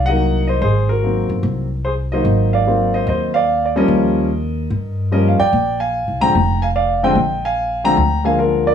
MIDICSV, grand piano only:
0, 0, Header, 1, 2, 480
1, 0, Start_track
1, 0, Tempo, 408998
1, 722, Time_signature, 4, 2, 24, 8
1, 10265, End_track
2, 0, Start_track
2, 0, Title_t, "Grand piano"
2, 0, Program_c, 0, 0
2, 67, Note_on_c, 0, 78, 96
2, 88, Note_on_c, 0, 75, 75
2, 98, Note_on_c, 0, 51, 57
2, 104, Note_on_c, 0, 54, 53
2, 109, Note_on_c, 0, 58, 50
2, 111, Note_on_c, 0, 63, 63
2, 522, Note_off_c, 0, 78, 0
2, 533, Note_off_c, 0, 75, 0
2, 557, Note_on_c, 0, 75, 80
2, 577, Note_on_c, 0, 72, 67
2, 698, Note_off_c, 0, 51, 0
2, 701, Note_off_c, 0, 54, 0
2, 704, Note_off_c, 0, 58, 0
2, 705, Note_off_c, 0, 63, 0
2, 706, Note_off_c, 0, 72, 0
2, 723, Note_off_c, 0, 75, 0
2, 724, Note_on_c, 0, 72, 87
2, 749, Note_on_c, 0, 68, 69
2, 1037, Note_off_c, 0, 68, 0
2, 1047, Note_on_c, 0, 70, 79
2, 1056, Note_off_c, 0, 72, 0
2, 1073, Note_on_c, 0, 66, 51
2, 1206, Note_on_c, 0, 51, 47
2, 1214, Note_on_c, 0, 54, 44
2, 1221, Note_on_c, 0, 58, 43
2, 1225, Note_on_c, 0, 60, 52
2, 1494, Note_off_c, 0, 70, 0
2, 1508, Note_off_c, 0, 66, 0
2, 1945, Note_off_c, 0, 51, 0
2, 1948, Note_off_c, 0, 54, 0
2, 1952, Note_off_c, 0, 58, 0
2, 1954, Note_off_c, 0, 60, 0
2, 2167, Note_on_c, 0, 72, 73
2, 2182, Note_on_c, 0, 68, 56
2, 2239, Note_off_c, 0, 72, 0
2, 2253, Note_off_c, 0, 68, 0
2, 2488, Note_on_c, 0, 75, 80
2, 2497, Note_on_c, 0, 54, 56
2, 2499, Note_on_c, 0, 51, 60
2, 2504, Note_on_c, 0, 58, 56
2, 2508, Note_on_c, 0, 63, 62
2, 2509, Note_on_c, 0, 72, 60
2, 2947, Note_off_c, 0, 72, 0
2, 2971, Note_on_c, 0, 77, 72
2, 2984, Note_off_c, 0, 75, 0
2, 2988, Note_on_c, 0, 74, 63
2, 3100, Note_off_c, 0, 54, 0
2, 3101, Note_off_c, 0, 51, 0
2, 3104, Note_off_c, 0, 58, 0
2, 3106, Note_off_c, 0, 63, 0
2, 3135, Note_on_c, 0, 51, 54
2, 3138, Note_on_c, 0, 58, 46
2, 3139, Note_on_c, 0, 60, 57
2, 3140, Note_on_c, 0, 54, 47
2, 3427, Note_off_c, 0, 74, 0
2, 3451, Note_on_c, 0, 75, 81
2, 3466, Note_off_c, 0, 77, 0
2, 3466, Note_on_c, 0, 72, 64
2, 3602, Note_off_c, 0, 75, 0
2, 3605, Note_off_c, 0, 72, 0
2, 3619, Note_on_c, 0, 75, 78
2, 3634, Note_on_c, 0, 72, 64
2, 3870, Note_off_c, 0, 51, 0
2, 3872, Note_off_c, 0, 58, 0
2, 3872, Note_off_c, 0, 60, 0
2, 3873, Note_off_c, 0, 54, 0
2, 3920, Note_on_c, 0, 77, 86
2, 3922, Note_off_c, 0, 72, 0
2, 3939, Note_on_c, 0, 74, 67
2, 3946, Note_off_c, 0, 75, 0
2, 4273, Note_off_c, 0, 74, 0
2, 4291, Note_on_c, 0, 74, 62
2, 4306, Note_off_c, 0, 77, 0
2, 4406, Note_off_c, 0, 74, 0
2, 4409, Note_on_c, 0, 53, 70
2, 4409, Note_on_c, 0, 55, 66
2, 4412, Note_on_c, 0, 58, 67
2, 4414, Note_on_c, 0, 61, 79
2, 4428, Note_on_c, 0, 75, 83
2, 4436, Note_on_c, 0, 70, 64
2, 5017, Note_off_c, 0, 53, 0
2, 5017, Note_off_c, 0, 55, 0
2, 5018, Note_off_c, 0, 58, 0
2, 5019, Note_off_c, 0, 61, 0
2, 5974, Note_off_c, 0, 70, 0
2, 5996, Note_off_c, 0, 75, 0
2, 6003, Note_on_c, 0, 55, 52
2, 6004, Note_on_c, 0, 53, 57
2, 6007, Note_on_c, 0, 58, 51
2, 6011, Note_on_c, 0, 61, 61
2, 6014, Note_on_c, 0, 75, 83
2, 6028, Note_on_c, 0, 70, 66
2, 6199, Note_on_c, 0, 77, 63
2, 6216, Note_off_c, 0, 70, 0
2, 6229, Note_off_c, 0, 75, 0
2, 6296, Note_off_c, 0, 53, 0
2, 6296, Note_off_c, 0, 55, 0
2, 6298, Note_off_c, 0, 58, 0
2, 6300, Note_off_c, 0, 61, 0
2, 6320, Note_off_c, 0, 77, 0
2, 6332, Note_on_c, 0, 79, 102
2, 6333, Note_on_c, 0, 74, 70
2, 6778, Note_off_c, 0, 74, 0
2, 6778, Note_off_c, 0, 79, 0
2, 6808, Note_on_c, 0, 80, 84
2, 6809, Note_on_c, 0, 77, 65
2, 7255, Note_off_c, 0, 77, 0
2, 7283, Note_on_c, 0, 50, 58
2, 7288, Note_on_c, 0, 53, 52
2, 7288, Note_on_c, 0, 56, 51
2, 7293, Note_on_c, 0, 82, 106
2, 7300, Note_on_c, 0, 60, 62
2, 7301, Note_on_c, 0, 79, 75
2, 7303, Note_off_c, 0, 80, 0
2, 7428, Note_off_c, 0, 50, 0
2, 7431, Note_off_c, 0, 53, 0
2, 7431, Note_off_c, 0, 56, 0
2, 7436, Note_off_c, 0, 60, 0
2, 7741, Note_off_c, 0, 79, 0
2, 7771, Note_on_c, 0, 80, 91
2, 7783, Note_on_c, 0, 77, 68
2, 7785, Note_off_c, 0, 82, 0
2, 7830, Note_off_c, 0, 80, 0
2, 7841, Note_off_c, 0, 77, 0
2, 7930, Note_on_c, 0, 74, 67
2, 7932, Note_on_c, 0, 77, 81
2, 8227, Note_off_c, 0, 74, 0
2, 8228, Note_off_c, 0, 77, 0
2, 8252, Note_on_c, 0, 50, 73
2, 8253, Note_on_c, 0, 53, 63
2, 8254, Note_on_c, 0, 56, 66
2, 8261, Note_on_c, 0, 79, 99
2, 8266, Note_on_c, 0, 60, 82
2, 8270, Note_on_c, 0, 75, 70
2, 8391, Note_off_c, 0, 50, 0
2, 8392, Note_off_c, 0, 53, 0
2, 8393, Note_off_c, 0, 56, 0
2, 8398, Note_off_c, 0, 60, 0
2, 8705, Note_off_c, 0, 75, 0
2, 8745, Note_on_c, 0, 80, 87
2, 8746, Note_on_c, 0, 77, 70
2, 8747, Note_off_c, 0, 79, 0
2, 9182, Note_off_c, 0, 77, 0
2, 9204, Note_on_c, 0, 50, 66
2, 9204, Note_on_c, 0, 53, 61
2, 9210, Note_on_c, 0, 79, 76
2, 9212, Note_on_c, 0, 82, 115
2, 9213, Note_on_c, 0, 60, 71
2, 9214, Note_on_c, 0, 56, 56
2, 9228, Note_off_c, 0, 80, 0
2, 9346, Note_off_c, 0, 50, 0
2, 9346, Note_off_c, 0, 53, 0
2, 9351, Note_off_c, 0, 56, 0
2, 9351, Note_off_c, 0, 60, 0
2, 9653, Note_off_c, 0, 79, 0
2, 9670, Note_on_c, 0, 50, 52
2, 9677, Note_on_c, 0, 53, 51
2, 9679, Note_on_c, 0, 58, 65
2, 9682, Note_on_c, 0, 56, 48
2, 9687, Note_on_c, 0, 80, 85
2, 9691, Note_on_c, 0, 77, 70
2, 9701, Note_off_c, 0, 82, 0
2, 9832, Note_off_c, 0, 80, 0
2, 9834, Note_off_c, 0, 77, 0
2, 9845, Note_on_c, 0, 70, 74
2, 9854, Note_on_c, 0, 65, 62
2, 10142, Note_off_c, 0, 70, 0
2, 10146, Note_off_c, 0, 65, 0
2, 10177, Note_on_c, 0, 74, 80
2, 10180, Note_on_c, 0, 70, 59
2, 10235, Note_off_c, 0, 74, 0
2, 10239, Note_off_c, 0, 70, 0
2, 10265, Note_off_c, 0, 50, 0
2, 10265, Note_off_c, 0, 53, 0
2, 10265, Note_off_c, 0, 56, 0
2, 10265, Note_off_c, 0, 58, 0
2, 10265, End_track
0, 0, End_of_file